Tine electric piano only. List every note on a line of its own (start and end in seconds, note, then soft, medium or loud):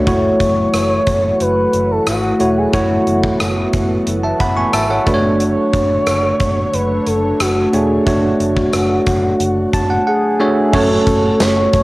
0.07 1.28 A3 medium
0.07 1.28 E4 medium
0.07 1.28 F#4 medium
0.07 1.28 C#5 medium
2.40 2.70 A3 medium
2.40 2.70 E4 medium
2.40 2.71 F#4 medium
2.40 2.71 C#5 medium
2.73 3.94 A3 medium
2.73 3.94 E4 medium
2.73 3.95 F#4 medium
2.73 3.95 C#5 medium
4.23 4.40 E5 soft
4.23 4.39 A5 medium
4.40 4.56 F#5 medium
4.40 4.56 B5 medium
4.57 4.73 G#5 medium
4.57 4.73 C#6 medium
4.74 4.90 E5 medium
4.74 4.89 A5 medium
4.90 5.13 C#5 soft
4.90 5.22 F#5 medium
5.06 6.28 A3 medium
5.06 6.28 D4 medium
5.06 6.28 F#4 medium
5.06 5.14 B4 medium
5.14 6.31 C#5 medium
7.73 8.04 A3 medium
7.73 8.04 D4 medium
7.73 8.04 F#4 medium
7.73 8.04 C#5 medium
8.06 9.28 A3 medium
8.06 9.28 D4 medium
8.06 9.28 F#4 medium
8.06 9.28 C#5 medium
9.74 9.89 A5 medium
9.90 10.06 F#5 medium
10.07 10.38 F#5 medium
10.40 10.70 A3 medium
10.40 10.70 D4 medium
10.40 10.71 F#4 medium
10.40 10.71 C#5 medium
10.40 10.71 E5 medium
10.73 11.83 A3 medium
10.73 11.83 C#4 medium
10.73 11.83 F#4 medium
10.73 11.83 C#5 medium